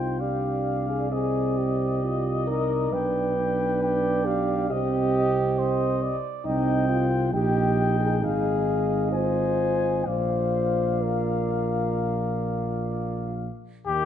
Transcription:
Already playing: C2 D#4 F4 C5 G5
0.19 D4 G4 D5 F5
0.89 G#4
1.12 C4 G#4 D#5
1.57 G4
2.02 F4
2.47 D#4 A#4
2.91 B1 D4 B4 G5
3.38 D4
3.83 D5 G5
4.25 G4 F5
4.70 C2 C4 G4 D#5
5.17 D#5
5.59 C5 D#5
6.03 D5
6.45 C2 C4 D#4 D#5 G5
6.89 F4
7.32 A#1 D#4 G4 D#5 G5
8.00 G#4
8.21 G#1 G#4 D#5 F5
9.12 F4 C5 G#5
10.06 A#1 F4 C5 D5 F5
11.03 A#4
13.86 D#2 A#3 D#4 G4

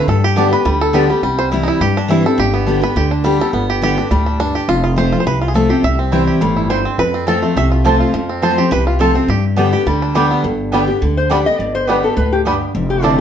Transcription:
0.08 G2 A4
0.24 G4
0.36 D3 G3 B3 D4 G4 D5 A5
0.51 B3 G4 B4
0.65 D2 D3 G3
0.81 A4
0.93 D3 G3 B3 G4 D5 A5
1.09 G3 B3 G4
1.23 C2 C3 G3
1.39 C5
1.51 E3 G3 C4 E4
1.63 D#4
1.68 E4
1.80 G2 G4
1.97 D4
2.08 E3 G3 C4 E4
2.24 C4 E4 A4
2.38 G1 G2 G4
2.54 B3
2.66 D3 G3 B3 D4 G4
2.81 B3 G4 B4
2.96 D2 D3 G4
3.11 D4
3.24 D3 G3 B3 G4
3.39 B3 G4 A4
3.53 G1 G2 B3
3.70 G4
3.82 D3 G3 B3 G4
3.97 B3 D4 G4
4.11 D2 A2 G3
4.26 D4
4.40 G2 D4
4.55 G4
4.68 F1 F2 F4
4.84 F4
4.96 F3 A3 C4 F4 C5
5.12 C4 F4
5.20 C5
5.25 C2 C3 B4
5.41 F4
5.48 G#4
5.54 F3 A3 C4 F4 A4
5.69 C4 F4 G4
5.83 C2 C3 E5
5.99 C4
6.11 E3 G3 C4 E4 C5 G5
6.27 G4
6.41 G1 A2 G3
6.56 E4
6.69 G2 C4 E4 C5 G5
6.85 C4
6.98 F2 B4
7.14 C4
7.27 F3 A3 C4 F4 A4 C5 A5
7.42 A3 C4 F4
7.56 C2 C3 E5
7.72 F4
7.84 F3 A3 C4 F4 C5 A5
8.00 F4
8.14 F2 F3
8.29 C4
8.42 F3 A3 C4 F4 C5 A5
8.58 C4 F4 G4
8.71 C2 C3 B4
8.87 F4
8.99 F3 A3 C4 F4 A4 C5 A5
9.15 C4 F4
9.28 G2 G4
9.56 D3 G3 B3 D4 G4 D5 G5
9.72 B3 G4
9.86 D2 D3 G3
10.02 D4
10.14 D3 G3 B3 G4 D5 G5
10.31 B3
10.44 G1 G2
10.72 D3 G3 B3 D4 G4 D5 G5
10.88 B3 G4
11.02 D2 D3
11.17 C5
11.30 D3 G3 B3 D4 G4 D5 G5
11.45 B3 G4 D#5
11.59 G1 G2 D5
11.75 C5
11.87 D3 G3 B3 D4 G4 B4 D5 G5
12.03 B3 G4 A4
12.17 D2 A2 B4
12.33 G4
12.45 G2 G3 B3 D4 G4 D5 G5
12.75 F1 F2
12.90 G4
13.02 D3 A3 C4 D4 E4 F4 D5 A5

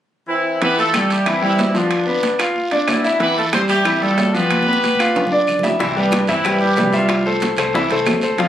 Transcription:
0.28 E3 C4 E4
0.61 E3 B3 E4 G4 B4, high conga, high timbale, long guiro
0.78 A3 F4 A4, high conga
0.94 G3 G4, high conga, high timbale, low timbale, short guiro, claves
1.10 G3 E4 G4, high conga, high timbale, short guiro
1.26 E3 C4 E4, high conga, high timbale, long guiro, claves
1.42 E3 G3 C4 E4 G4, high conga
1.58 high conga, high timbale, low timbale, short guiro
1.74 D3 F3 B3 D4 F4, high conga, short guiro
1.91 high conga, high timbale, long guiro, claves
2.07 B3 B4, high conga
2.23 high conga, high timbale, low timbale, short guiro
2.39 F4 F5, high timbale, short guiro, claves
2.56 high conga, long guiro
2.71 D4 D5, high conga, high timbale
2.87 E3 B3 E4, high conga, high timbale, low timbale, short guiro, claves
3.04 E4 E5, high conga, short guiro
3.20 E3 B3 E4 G4 B4, high conga, high timbale, long guiro
3.36 A3 F4 A4, high conga
3.53 G3 C4 G4 C5, high conga, high timbale, low timbale, short guiro, claves
3.68 G3 E4 G4, high conga, high timbale, short guiro
3.85 E3 E4, high conga, high timbale, long guiro, claves
4.01 G3 A3 F4 G4 A4, high conga
4.18 high conga, high timbale, low timbale, short guiro
4.34 F3 B3 F4 G4 B4, high conga, short guiro
4.50 high conga, high timbale, long guiro, claves
4.62 B3, high conga
4.67 B4
4.73 high conga
4.83 high conga, high timbale, low timbale, short guiro
4.95 high conga
4.99 F4 F5, high timbale, short guiro, claves
5.15 low conga, high timbale, long guiro
5.27 low conga
5.31 D4 D5
5.47 low conga, short guiro, claves
5.59 E4, low conga
5.63 E5, low timbale, short guiro
5.70 low conga
5.79 C2 C3 E3 G3 C4 E4 E5, high bongo, high conga, high timbale, long guiro
5.96 D3 G3 B3 D4 G4 B4, high bongo, high conga
6.11 high bongo, high conga, high timbale, low timbale, short guiro, claves
6.27 G2 E3 C4 E4 E5, high bongo, high conga, high timbale, short guiro
6.44 G3 G4 B4, high bongo, high conga, high timbale, long guiro, claves
6.59 E3 G3 E4 G4, high bongo, high conga
6.76 C2 G3 G4 B4, high bongo, low bongo, high conga, high timbale, low timbale, short guiro
6.93 F3 G3 C4 F4 G4 E5, high conga, short guiro
7.08 high bongo, high timbale, long guiro, claves
7.26 A3 A4 C5, high bongo, high conga
7.40 high bongo, high conga, high timbale, low timbale, short guiro
7.56 C2 A3 A4 C5, high bongo, high timbale, short guiro, claves
7.73 E3 E4 E5, high bongo, high conga, long guiro
7.90 C2 A3 A4 C5, high bongo, high conga, high timbale
8.06 D2, high bongo, low bongo, high conga, high timbale, low timbale, short guiro, claves
8.21 A3 A4 C5, high conga, short guiro
8.38 F3 F4 F5, high bongo, high conga, high timbale, long guiro

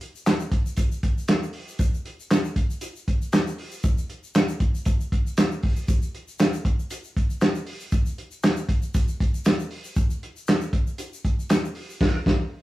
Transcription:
0.01 closed hi-hat
0.15 shaker
0.26 snare, clap, closed hi-hat, shaker
0.40 shaker
0.52 kick, closed hi-hat
0.66 shaker
0.77 kick, closed hi-hat, shaker
0.92 shaker
1.03 kick, closed hi-hat
1.18 shaker
1.28 snare, clap, closed hi-hat, shaker
1.43 shaker
1.53 open hi-hat
1.68 shaker
1.79 kick, closed hi-hat, shaker
1.94 shaker
2.05 closed hi-hat
2.20 shaker
2.31 snare, clap, closed hi-hat, shaker
2.45 shaker
2.56 kick, closed hi-hat
2.70 shaker
2.81 closed hi-hat, shaker
2.96 shaker
3.08 kick, closed hi-hat
3.22 shaker
3.32 snare, clap, closed hi-hat, shaker
3.47 shaker
3.58 open hi-hat
3.72 shaker
3.83 kick, closed hi-hat, shaker
3.98 shaker
4.10 closed hi-hat
4.24 shaker
4.34 snare, clap, closed hi-hat, shaker
4.49 shaker
4.60 kick, closed hi-hat
4.75 shaker
4.85 kick, closed hi-hat, shaker
5.01 shaker
5.12 kick, closed hi-hat
5.27 shaker
5.37 snare, clap, closed hi-hat, shaker
5.51 shaker
5.63 kick, open hi-hat
5.76 shaker
5.88 kick, closed hi-hat, shaker
6.02 shaker
6.15 closed hi-hat
6.28 shaker
6.39 snare, clap, closed hi-hat, shaker
6.53 shaker
6.65 kick, closed hi-hat
6.79 shaker
6.90 closed hi-hat, shaker
7.04 shaker
7.17 kick, closed hi-hat
7.30 shaker
7.41 snare, clap, closed hi-hat, shaker
7.55 shaker
7.66 open hi-hat
7.80 shaker
7.91 kick, closed hi-hat, shaker
8.06 shaker
8.18 closed hi-hat
8.31 shaker
8.43 snare, clap, closed hi-hat, shaker
8.57 shaker
8.69 kick, closed hi-hat
8.82 shaker
8.94 kick, closed hi-hat, shaker
9.08 shaker
9.20 kick, closed hi-hat
9.34 shaker
9.45 snare, clap, closed hi-hat, shaker
9.60 shaker
9.71 open hi-hat
9.84 shaker
9.96 kick, closed hi-hat, shaker
10.10 shaker
10.23 closed hi-hat
10.36 shaker
10.47 snare, clap, closed hi-hat, shaker
10.61 shaker
10.73 kick, closed hi-hat
10.87 shaker
10.98 closed hi-hat, shaker
11.13 shaker
11.25 kick, closed hi-hat
11.40 shaker
11.49 snare, clap, closed hi-hat, shaker
11.65 shaker
11.75 open hi-hat
11.90 shaker
12.01 kick, snare, crash
12.26 kick, snare

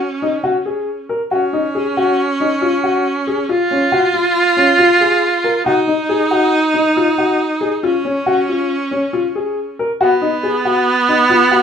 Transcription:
Already playing: C#4
0.22 D#4
0.44 F#4
0.66 G#4
1.09 A#4
1.31 C#4 F#4
1.53 D#4
1.75 G#4
1.97 F#4
2.40 D#4
2.62 F4
2.84 F#4
3.27 G#4
3.49 F4
3.71 C#4
3.92 F#4
4.14 F4
4.57 C#4
4.79 F4
5.01 G#4
5.44 A#4
5.66 D#4 F#4
5.88 D#4
6.09 G#4
6.31 F#4
6.74 D#4
6.97 F4
7.18 F#4
7.61 G#4
7.83 C#4 F4
8.05 C#4
8.26 F#4
8.49 F4
8.91 C#4
9.13 F4
9.36 G#4
9.79 A#4
10.01 B3 F#4
10.22 D#4
10.43 G#4
10.65 F#4
11.09 D#4
11.30 F4
11.51 F#4

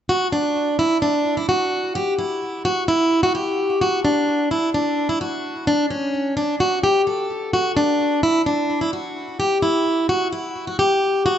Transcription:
0.09 F#4
0.32 D4
0.79 E4
1.02 D4
1.37 E4
1.49 F#4
1.95 G4
2.18 E4
2.65 F#4
2.88 E4
3.23 F#4
3.35 G4
3.81 F#4
4.05 D4
4.51 E4
4.74 D4
5.09 E4
5.21 F#4
5.67 D4
5.90 C#4
6.37 D4
6.60 F#4
6.83 G4
7.07 A4
7.53 F#4
7.77 D4
8.23 E4
8.46 D4
8.81 E4
8.93 F#4
9.40 G4
9.62 E4
10.09 F#4
10.32 E4
10.67 F#4
10.79 G4
11.26 F#4

